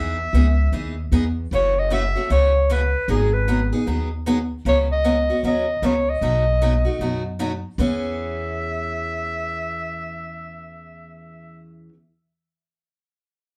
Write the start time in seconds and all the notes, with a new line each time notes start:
Already playing: E2 E3 B3 D#4 G#4 E5
0.33 C#2 E3 B3 D#4 G#4
0.72 D#2 E3 B3 D#4 G#4
1.12 E2 E3 B3 D#4 G#4
1.51 F#1 C#3 E3 A3 C#4 F#4 C#5
1.79 D#5
1.90 C#3 E3 A3 C#4 F#4 E5
2.16 A3 C#4 F#4
2.30 C#2 C#3 E3 A3 C#4 F#4 C#5
2.70 C#3 E3 A3 C#4 F#4 B4
3.08 G#1 D#3 F#3 B3 D#4 G#4
3.33 B4
3.48 D#3 F#3 B3 D#4 G#4
3.73 B3 D#4 G#4
3.87 D#2 D#3 F#3 B3 D#4 G#4
4.26 D#3 F#3 B3 D#4 G#4
4.65 C#2 C#3 F#3 B3 C#4 F#4 C#5
4.92 D#5
5.04 C#3 F#3 B3 C#4 F#4
5.30 B3 C#4 F#4
5.43 D#2 C#3 F#3 B3 C#4 F#4
5.47 D#5
5.82 C#2 C#3 F#3 B3 C#4 F#4 C#5
6.09 D#5
6.21 B1 B2 F#3 A3 D#4 F#4
6.62 B2 F#3 A3 D#4 F#4
6.85 A3 D#4 F#4
6.99 F#2 B2 F#3 A3 D#4 F#4
7.39 B2 F#3 A3 D#4 F#4
7.78 E2 E3 B3 C#4 G#4 E5